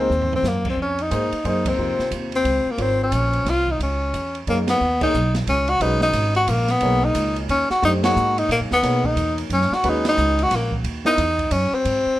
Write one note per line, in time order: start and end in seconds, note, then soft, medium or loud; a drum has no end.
0.00 0.33 C4 medium
0.10 0.42 D#2 medium
0.10 hi-hat pedal soft
0.22 floor tom medium
0.33 0.49 C4 medium
0.33 floor tom medium
0.43 0.76 F#2 medium
0.43 snare medium
0.43 hi-hat pedal medium
0.48 0.66 A#3 medium
0.65 kick medium
0.65 crash medium
0.70 0.79 C4 medium
0.77 1.10 F2 medium
0.82 1.03 C#4 medium
0.99 1.46 D#4 medium
0.99 ride soft
1.10 1.30 G#2 medium
1.10 1.29 A#3 medium
1.10 1.29 D#4 soft
1.10 1.29 G#4 soft
1.10 1.30 C5 medium
1.10 hi-hat pedal medium
1.10 ride medium
1.32 muted upright bass stroke soft
1.32 ride soft
1.44 1.77 F#2 medium
1.44 1.95 A#3 medium
1.44 1.95 D#4 soft
1.44 1.95 G#4 medium
1.44 1.77 C5 medium
1.44 ride soft
1.48 1.70 D#4 medium
1.65 2.13 C4 medium
1.65 kick medium
1.65 ride medium
1.78 1.97 F2 medium
1.78 2.71 C3 soft
1.78 2.71 F4 soft
1.78 2.71 A#4 soft
1.78 2.71 C5 soft
1.99 muted upright bass stroke soft
1.99 snare soft
2.11 2.44 D#2 medium
2.11 hi-hat pedal soft
2.11 ride medium
2.32 2.72 C4 medium
2.32 ride soft
2.44 2.64 C#2 medium
2.44 ride medium
2.65 muted upright bass stroke soft
2.71 2.83 A#3 medium
2.78 3.11 G#1 medium
2.78 3.01 C4 medium
2.78 3.72 F4 soft
2.78 3.72 A#4 soft
2.78 3.72 C5 medium
2.78 3.72 C#5 medium
2.78 ride medium
3.03 3.51 C#4 medium
3.12 3.44 A#1 medium
3.12 hi-hat pedal medium
3.12 ride medium
3.33 ride soft
3.45 3.78 C2 medium
3.45 snare soft
3.45 ride medium
3.50 3.73 F4 medium
3.67 3.82 D#4 medium
3.67 kick soft
3.79 4.12 C#2 medium
3.79 4.44 C#4 medium
3.79 ride medium
4.13 4.46 E2 medium
4.13 hi-hat pedal soft
4.13 ride soft
4.35 ride soft
4.47 4.80 F#2 medium
4.47 4.81 A#3 medium
4.47 4.58 A#3 medium
4.47 4.81 D#4 soft
4.47 4.81 G#4 medium
4.47 4.81 C#5 medium
4.47 ride soft
4.67 5.00 B3 medium
4.67 snare medium
4.67 ride medium
4.81 5.13 D#2 medium
5.01 5.12 A#3 medium
5.01 5.13 D#4 medium
5.01 5.33 D#4 medium
5.01 5.13 G#4 medium
5.01 5.13 C#5 medium
5.01 kick medium
5.01 crash medium
5.14 5.46 B1 medium
5.14 hi-hat pedal medium
5.34 snare medium
5.34 ride soft
5.47 5.79 C#2 medium
5.47 5.71 C#4 medium
5.47 ride medium
5.68 5.84 F#4 medium
5.68 ride soft
5.80 6.13 B1 medium
5.80 6.74 G#3 medium
5.80 6.74 C#4 soft
5.80 6.02 D#4 medium
5.80 6.74 F#4 soft
5.80 6.74 B4 medium
5.80 ride medium
6.01 6.33 D#4 medium
6.01 snare soft
6.13 6.46 G#1 medium
6.13 hi-hat pedal soft
6.13 ride medium
6.35 6.51 F#4 medium
6.35 ride soft
6.47 6.80 A#1 medium
6.47 6.72 A#3 medium
6.47 hi-hat pedal medium
6.47 ride medium
6.68 7.06 B3 medium
6.68 snare soft
6.68 ride soft
6.81 7.14 B1 medium
6.81 7.75 A#3 medium
6.81 7.75 D#4 medium
6.81 7.75 G#4 medium
6.81 7.75 C#5 medium
6.81 ride medium
7.04 7.37 D#4 medium
7.14 7.47 C#2 medium
7.14 hi-hat pedal medium
7.14 ride medium
7.36 ride soft
7.48 7.68 D#2 medium
7.48 7.69 C#4 medium
7.48 ride medium
7.70 7.82 F#4 medium
7.70 muted upright bass stroke soft
7.70 snare soft
7.82 8.15 F#2 medium
7.82 8.01 A3 medium
7.82 8.01 D4 medium
7.82 7.93 D#4 medium
7.82 8.01 G4 medium
7.82 8.02 C5 medium
7.82 ride medium
8.03 8.75 A#3 medium
8.03 8.75 D#4 medium
8.03 8.40 F#4 medium
8.03 8.75 G#4 medium
8.03 8.76 C#5 medium
8.03 snare medium
8.03 ride medium
8.16 8.48 G#2 medium
8.16 hi-hat pedal medium
8.38 8.50 D#4 medium
8.38 ride soft
8.49 8.62 A#2 medium
8.49 8.61 A#3 medium
8.49 ride medium
8.60 8.71 F#2 medium
8.71 8.82 D#2 medium
8.71 9.07 B3 medium
8.71 snare soft
8.82 9.15 B2 medium
8.82 9.76 A#3 medium
8.82 9.76 D#4 medium
8.82 9.76 G#4 soft
8.82 9.76 C#5 medium
8.82 snare soft
8.82 ride medium
9.04 9.38 D#4 medium
9.04 kick medium
9.16 9.49 E2 medium
9.16 hi-hat pedal medium
9.16 ride medium
9.38 ride soft
9.50 9.69 F#2 medium
9.50 9.76 C#4 medium
9.50 ride medium
9.61 snare soft
9.71 9.91 F#4 medium
9.71 muted upright bass stroke soft
9.71 snare soft
9.84 10.16 D#2 medium
9.84 10.77 G#3 medium
9.84 10.77 C#4 medium
9.84 10.77 F#4 soft
9.84 10.77 B4 medium
9.84 ride medium
9.89 10.07 D#4 medium
10.05 10.44 D#4 loud
10.05 snare medium
10.05 ride medium
10.17 10.50 C#2 loud
10.17 hi-hat pedal medium
10.39 ride soft
10.43 10.58 F#4 loud
10.51 10.83 A#1 medium
10.51 snare soft
10.51 ride medium
10.56 10.74 A#3 medium
10.71 kick medium
10.84 11.17 D#2 medium
10.84 ride medium
11.05 11.17 B3 medium
11.05 11.53 D#4 loud
11.05 11.17 E4 medium
11.05 11.17 A#4 medium
11.05 11.17 D#5 medium
11.05 snare soft
11.18 11.50 E2 loud
11.18 hi-hat pedal soft
11.18 ride medium
11.39 kick soft
11.39 ride soft
11.51 11.71 F#2 medium
11.51 11.76 C#4 medium
11.51 ride medium
11.72 12.20 C4 medium
11.72 muted upright bass stroke soft
11.85 12.05 G#2 medium
11.85 ride medium
12.06 muted upright bass stroke soft